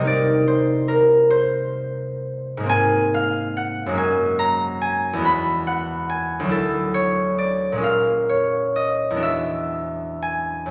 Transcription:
harp
Already playing: C3 C4 A#4 C5 D#5
0.00 G3 A#3
0.05 D#4 D5
0.48 C5
0.88 A#4
1.30 C5
2.57 G#2 G#3
2.63 A#3 C4
2.69 G#5
3.14 F5
3.57 F#5
3.86 F#2 G#3
3.92 A#3 C#4
3.98 G#5
4.39 A#5
4.82 G#5
5.13 E2 G#3
5.19 B3 F#4
5.25 B5
5.67 F#5
6.10 G#5
6.40 D2 F#3
6.46 D4 E4
6.51 A4
6.94 C#5
7.38 D5
7.72 A#2 G#3
7.78 C#4 F4
7.84 F5
8.29 C#5
8.76 D#5
9.10 E2 G#3
9.16 D4 F#4
9.23 E5
10.22 G#5
10.66 F#2

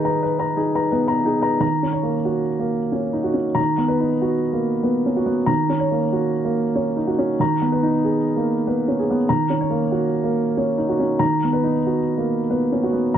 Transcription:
upright piano
Already playing: D#3 D#4 G#4 B4 A#5
0.05 B4 A#5
0.23 B4
0.39 B4 A#5
0.56 D#4 G#4
0.75 B4 A#5
0.92 B3 B4
1.07 B4 A#5
1.25 D#4 G#4
1.42 B4 A#5
1.60 D#3 A#5
1.83 C#4
1.93 C#5
2.03 A#3
2.25 F#4
2.59 A#3
2.92 C#4 C#5
3.13 D#4
3.24 F#4
3.34 C#4
3.55 D#3 A#5
3.78 B3
3.88 B4
4.00 D#4
4.22 F#4
4.53 A#3
4.83 B3 B4
5.06 C#4
5.16 F#4
5.26 B3
5.46 D#3 A#5
5.69 C#4
5.80 C#5
5.91 A#3
6.13 F#4
6.45 A#3
6.75 C#4 C#5
6.97 D#4
7.07 F#4
7.19 C#4
7.40 D#3 A#5
7.62 B3
7.72 B4
7.83 D#4
8.04 G#4
8.36 A#3
8.67 B3 B4
8.88 C#4
9.00 G#4
9.11 B3
9.29 D#3 A#5
9.50 C#4
9.61 C#5
9.70 A#3
9.92 F#4
10.24 A#3
10.57 C#4 C#5
10.78 D#4
10.89 F#4
11.00 C#4
11.19 D#3 A#5
11.44 B3
11.53 B4
11.64 D#4
11.87 F#4
12.18 A#3
12.50 B3 B4
12.72 C#4
12.83 F#4
12.93 B3
13.14 A#5

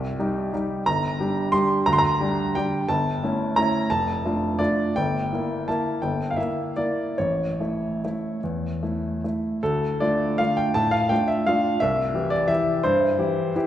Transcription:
upright piano
Already playing: C2 G5
0.19 G3 D#4 G4
0.53 G3 D#4 G4
0.86 G1 A#5
1.20 G3 D4 G4
1.52 G3 D4 G4 C6
1.86 D2 A#5
1.93 C6
1.98 A#5
2.20 G3 D4 G4
2.55 G3 D4 G4 G5
2.88 G1 A5
3.23 A3 C#4 E4
3.56 A3 C#4 E4 A#5
3.90 F1 A5
4.25 A3 D4 F4
4.59 A3 D4 F4 D5
4.96 G1 G5
5.33 A#3 E4
5.68 A#3 E4 A5
6.02 G1 G5
6.31 F5
6.36 A#3 E4 E5
6.76 A#3 E4 D5
7.18 A1 C#5
7.61 A3 E4
8.05 A3 E4
8.43 E2
8.83 A3 E4
9.24 A3 E4
9.63 D2 A4
10.00 A3 D4 F4 D5
10.38 A3 D4 F4 F5
10.57 G5
10.74 A2 A5
10.91 F5
11.09 A3 D4 F4 G5
11.28 E5
11.46 A3 D4 F4 F5
11.80 C2 E5
12.14 E3 E4 G4
12.30 D5
12.48 E3 E4 G4 E5
12.83 G2 C5
13.19 E3 E4 G4
13.55 E3 E4 G4

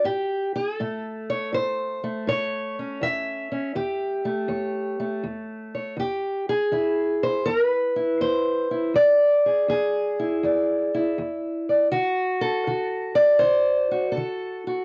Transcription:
steel-string acoustic guitar
0.04 A2 G4
0.55 G#4
0.75 A4
0.80 A2 A3
1.30 C#5
1.52 A2 C5
2.04 A3
2.27 A2 C#5
2.79 C#4
3.01 E2 E5
3.52 C#4
3.75 E2 G4
4.25 A3
4.48 E2 C#5
5.00 A3
5.23 E2
5.75 C#5
5.97 E2 G4
6.49 G#4
6.72 E2 E4
7.23 C5
7.46 E2 A#4
7.66 B4
7.96 E4
8.21 E2 C5
8.71 E4
8.94 E2 D5
9.46 G#4
9.68 E2 G#4
10.20 E4
10.43 E2 D5
10.94 E4
11.18 E2
11.69 D5
11.92 D3 F#4
12.41 A4
12.67 D3 F#4
13.15 D5
13.39 D3 C5
13.91 F#4
14.12 A4
14.17 D3
14.67 F#4

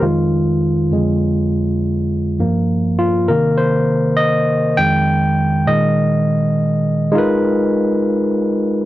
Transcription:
tine electric piano
0.01 F2 D#3 G#3 F4
0.91 F2 D3 G#3
2.39 G2 F3 A#3
2.99 F4
3.28 C3 D#3 A#3 A#4
3.58 C5
4.17 D#5
4.77 F2 D#3 G#3 G5
5.66 A#2 D#3 G#3 D#5
7.12 G#3 D#4 F4
7.17 A#4 B4

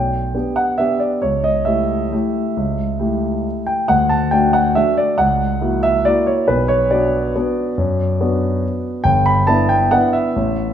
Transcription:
grand piano
Already playing: B1 G5
0.34 B3 D4 G4
0.56 F#5
0.78 B3 D4 G4 E5
1.00 D5
1.22 C#2 C#5
1.44 D#5
1.65 A3 E4 G4 E5
2.12 A3 E4 G4
2.57 C#2
2.99 A3 E4 G4
3.67 G5
3.88 D2 F#5
4.09 A5
4.31 A3 D4 F#4 G5
4.53 F#5
4.75 A3 D4 F#4 E5
4.97 D5
5.18 C#2 F#5
5.61 A#3 E4 F#4
5.83 E5
6.05 A#3 E4 F#4 D5
6.27 C#5
6.48 B1 B4
6.68 C#5
6.91 B3 D4 F#4 D5
7.36 B3 D4 F#4
7.78 F#2
8.21 B3 D4 F#4
9.04 G1 G5
9.26 B5
9.47 B3 D4 E4 A5
9.69 G5
9.91 B3 D4 E4 F#5
10.13 E5
10.36 A1

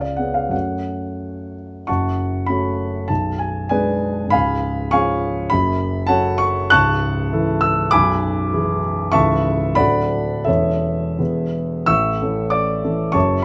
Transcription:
grand piano
Already playing: C#2
0.01 D5
0.16 B3 C#4 G#4 F#5
0.34 F5
0.49 F#2 A3 C#4 F#4 F#5
1.87 F#1 F#2 F#5 A5 C#6
2.46 A3 C#4 F#4 B5
3.08 B0 B1 A5
3.39 G#5
3.69 G#3 D4 G#4 B4 D5 G#5
4.27 C#1 B5
4.32 C#2 F5 G#5
4.91 F3 C#4 G#4 F5 G#5 C#6
5.50 F#1 F#2 B5
6.07 F#3 C#4 A4 C#5 F#5 A5
6.38 C#6
6.70 C#1 C#2 A5 C#6 F#6
7.32 E3 E4 A4
7.61 E6
7.91 B0 B1 G#5 B5 D6
8.53 E3 E4 G#4
9.12 C#1 C#2 E3 E4 A4 E5 A5 C#6
9.75 D1 D2 F#3 D4 A4 D5 F#5 B5
10.44 E1 E2 E3 C#4 A4 C#5 E5
11.19 E1 E2 E3 B3 G#4
11.86 A1 A2 E5 C#6 E6
12.22 E3 C#4 A4
12.50 D5 D6
12.84 E3 C#4 A4
13.12 F#1 F#2 C#5 A5 C#6

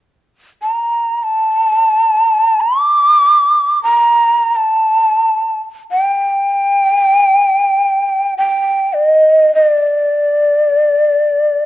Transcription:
shakuhachi
0.62 A#5
1.23 A5
2.61 D6
3.83 A#5
4.55 A5
5.91 G5
8.38 G5
8.93 D#5
9.55 D#5
9.67 D5

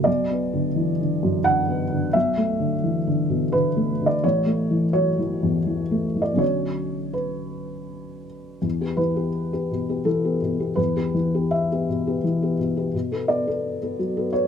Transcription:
felt piano
0.04 B1 D5
0.30 B3
0.53 D3
0.76 E3
1.00 D3
1.23 F#2
1.44 D3 F#5
1.68 B3
1.92 D3
2.13 B1 E5
2.37 A3
2.60 D3
2.84 E3
3.07 D3
3.29 B2
3.52 D3 B4
3.77 A3
4.01 D3
4.06 D5
4.24 A1 C#5
4.46 A3
4.71 E3
4.93 F#3 C#5
5.19 E3
5.43 E2
5.67 E3
5.91 A3
6.16 E3
6.22 D5
6.34 B1 D3 C#4 F#4
6.38 C#5
7.13 B4
8.62 E2
8.81 B3 G4
8.97 E3 B4
9.16 B3 G4
9.53 B3 G4
9.71 B2
9.89 B3 G4
10.05 E3 A4
10.24 B3 G4
10.42 B2
10.59 B3 G4
10.75 E2 B4
10.96 B3 G4
11.14 E3
11.34 B3 G4
11.51 E5
11.72 B3 G4
11.89 B2
12.07 B3 G4
12.24 E3
12.42 B3 G4
12.59 B2
12.77 B3 G4
12.94 B2
13.12 B3 A4
13.28 B3 D5
13.47 B3 A4
13.82 B3 A4
13.99 F#3
14.17 B3 A4
14.33 B3 C#5

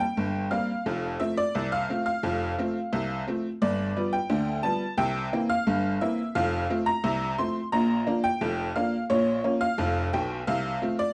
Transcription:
honky-tonk piano
0.00 G5
0.17 G1 G2
0.51 G3 A#3 C4 F5
0.86 F1 F2
1.20 F3 A3 C4 E5
1.37 D5
1.55 C2 C3
1.72 F5
1.89 F3 A3 C4
2.06 F5
2.23 F1 F2
2.58 F3 A3 C4
2.93 C2 C3
3.27 F3 A3 C4
3.62 G1 G2 D5
3.96 F3 G3 B3
4.13 G5
4.30 D2 D3
4.63 F3 G3 B3 A5
4.98 C2 C3 G5
5.33 E3 A#3 C4
5.50 F5
5.67 G1 G2
6.01 E3 A#3 C4 E5
6.35 F1 F2 F5
6.70 F3 A3 C4
6.86 A#5
7.04 C2 C3
7.38 F3 A3 C4 C6
7.72 A#1 A#2 A#5
8.07 F3 A#3 D4
8.24 G5
8.41 F1 F2
8.76 F3 A#3 D4 F5
9.10 A#1 A#2 C#5
9.44 F3 A#3 C#4
9.61 F5
9.78 F1 F2
10.13 B1 B2 G5
10.47 C2 C3 F5
10.82 F3 A3 C4
10.99 D5

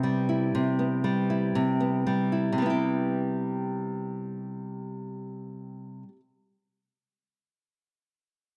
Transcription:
nylon-string guitar
Already playing: C3 B3 E4 G4
0.03 G3
0.29 E4
0.55 C3
0.79 B3
1.04 G3
1.30 E4
1.55 C3
1.80 B3
2.07 G3
2.32 E4
2.52 C3
2.58 G3
2.62 B3 E4
2.70 G4

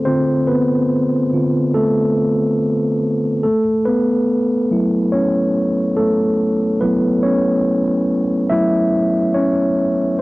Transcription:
tine electric piano
Already playing: C4 C5
0.05 D3 C4 F4 C5
0.48 B3 B4
1.33 D3 C4 F4
1.75 A3 A4
3.43 A3 A4
3.85 B3 B4
4.71 F#3 A3 E4
5.12 C#4 C#5
5.96 A3 A4
6.81 F#3 A3 B3 E4 B4
7.23 C#4 C#5
8.50 F#3 A3 E4 E5
9.34 C#4 C#5

